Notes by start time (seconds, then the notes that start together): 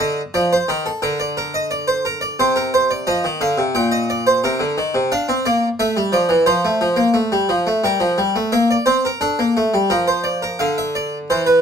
0.00 D3 D#5
0.34 F3 D5
0.53 C5
0.68 D#3 A#4
0.86 A4
1.02 D3 A#4
1.20 D5
1.37 A#4
1.54 D#5
1.71 D5
1.88 C5
2.05 A#4
2.21 D5
2.40 C3 C5
2.56 A#4
2.74 C5
2.91 D5
3.07 F3 D#5
3.24 D#3
3.41 D3 F5
3.58 C3
3.75 A#2 G5
3.91 D#5
4.10 D5
4.27 C5
4.44 C3 A#4
4.59 D3
4.78 D#3
4.94 C3
5.12 D4 F5
5.29 C4
5.45 A#3 D5
5.79 A3 E5
5.97 G3
6.12 F3 D5
6.29 E3
6.46 F3 C5
6.65 A3
6.81 F3
6.96 A#3
7.14 A3
7.32 G3
7.49 F3
7.67 A3
7.84 G3 A#4
8.00 F3
8.18 G3
8.36 A3
8.52 A#3 E5
8.71 D5
8.86 C4 C5
9.05 A#4
9.21 D4 A4
9.39 A#3
9.57 A3
9.74 G3
9.90 F3 A#4
10.08 C5
10.24 D5
10.42 A#4
10.59 D3 F5
10.78 E5
10.95 D5
11.30 E3 C5
11.46 B4